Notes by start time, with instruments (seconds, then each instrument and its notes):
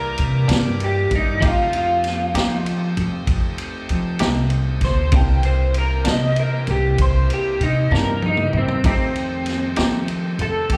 Already playing: tonewheel organ E3 G3 A#3 D5, clean electric guitar A#4
0.18 upright bass C3, ride
0.48 upright bass G2, clean electric guitar C3 E3 A#3 D4, snare, ride
0.80 ride
0.84 clean electric guitar G4
1.11 upright bass G2, kick, ride
1.16 clean electric guitar D#4
1.41 upright bass F2, clean electric guitar F3 A3 D#4 G4, tonewheel organ A3 C4 D#4 G4, kick, ride
1.45 clean electric guitar F4
1.73 clean electric guitar F4, ride
2.04 snare, ride
2.34 upright bass F3, clean electric guitar F3 A3 D#4 G4, snare, ride
2.66 ride
2.97 upright bass F2, ride
3.27 upright bass F2, kick, ride
3.58 ride
3.89 upright bass F3, ride
4.19 upright bass C2, clean electric guitar F3 A3 D#4 G4, snare, ride
4.50 ride
4.81 upright bass D2, clean electric guitar C5, kick, snare, ride
5.12 upright bass C2, clean electric guitar C3 E3 A#3 D4, tonewheel organ E3 A#3 C4 G4, kick, ride
5.16 clean electric guitar G5
5.43 clean electric guitar C5, ride
5.74 ride
5.78 clean electric guitar A#4
6.05 upright bass C3, clean electric guitar C3 E3 A#3 D4, snare, ride
6.09 clean electric guitar D#5
6.36 clean electric guitar A#4, ride
6.67 upright bass C2, clean electric guitar G4, ride
6.98 upright bass C2, clean electric guitar C5, kick, ride
7.30 clean electric guitar G4, ride
7.60 upright bass C3, clean electric guitar D#4, ride
7.91 upright bass G2, clean electric guitar C3 E3 A#3 D4 A#4, snare
8.22 clean electric guitar D#4, high tom
8.37 mid tom
8.53 upright bass G2, mid tom
8.58 clean electric guitar C4
8.68 floor tom
8.84 upright bass F2, tonewheel organ D#3 A3 C4 G4, clean electric guitar F3 A3 D#4 G4, kick, ride
8.88 clean electric guitar C4
9.16 ride
9.46 snare, ride
9.76 upright bass F3, clean electric guitar F3 A3 D#4 G4, snare, ride
10.08 ride
10.39 upright bass F2, clean electric guitar A4, ride
10.70 upright bass F2, clean electric guitar G4, kick, ride